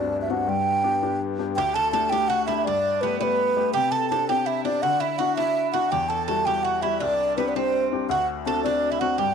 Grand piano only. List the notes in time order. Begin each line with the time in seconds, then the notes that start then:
Already playing: D2 C4 D4 F#4
0.30 C4 D4 F#4
0.47 G2
0.84 B3 D4 G4
1.02 B3 D4 G4
1.39 B3 D4 G4
1.57 D2
1.93 A3 D4 G4
2.11 A3 D4 G4
2.48 A3 D4 G4
2.66 G2
3.02 A3 B3 G4
3.20 A3 B3 G4
3.57 A3 B3 G4
3.75 C3
4.11 C4 D4 G4
4.29 C4 D4 G4
4.65 C4 D4 G4
4.83 D3
5.20 D4 E4 F#4
5.38 D4 E4 F#4
5.74 D4 E4 F#4
5.92 E2
6.28 G3 E4 F#4
6.47 G3 E4 F#4
6.83 G3 E4 F#4
7.02 C2
7.38 C4 D4 G4
7.56 C4 D4 G4
7.92 C4 D4 G4
8.09 D2
8.46 C4 D4 F#4
8.64 C4 D4 F#4
9.01 C4 D4 F#4
9.19 G2